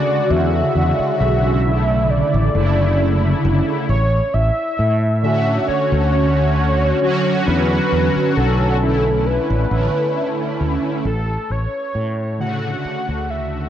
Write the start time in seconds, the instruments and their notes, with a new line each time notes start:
Already playing: analog polysynth C#3 D3 G#3 F#4, soft synth lead D5
0.31 fretless electric bass E2, soft synth lead E5
0.76 fretless electric bass E2
0.99 muted fretless electric bass stroke
1.20 fretless electric bass B1, soft synth lead E5
1.65 analog polysynth C#3 D3 A3 E4
2.10 soft synth lead D5
2.34 fretless electric bass A1
2.53 fretless electric bass F#1, analog polysynth C#3 D3 A3 E4
3.45 fretless electric bass F#1
3.89 fretless electric bass A1, soft synth lead C#5
4.34 fretless electric bass A1, soft synth lead E5
4.79 fretless electric bass A2
5.22 analog polysynth D3 A3 C#4 F#4, soft synth lead E5
5.68 soft synth lead C#5, muted fretless electric bass stroke
5.92 fretless electric bass D2
6.12 soft synth lead C#5
7.01 analog polysynth D3 F#3 C#4 F#4
7.46 fretless electric bass E2, soft synth lead B4
7.92 fretless electric bass E2
8.16 muted fretless electric bass stroke
8.36 fretless electric bass B1, soft synth lead A4
8.81 analog polysynth D3 A3 C#4 E4
9.26 soft synth lead B4
9.50 fretless electric bass A1
9.70 fretless electric bass A1, analog polysynth D3 A3 C#4 E4
10.61 fretless electric bass D2
11.05 fretless electric bass A1, soft synth lead A4
11.50 fretless electric bass A1, soft synth lead C#5
11.95 fretless electric bass A2
12.38 analog polysynth C#3 D3 A3 F#4, soft synth lead F#5
12.85 muted fretless electric bass stroke
13.08 fretless electric bass D2
13.30 soft synth lead E5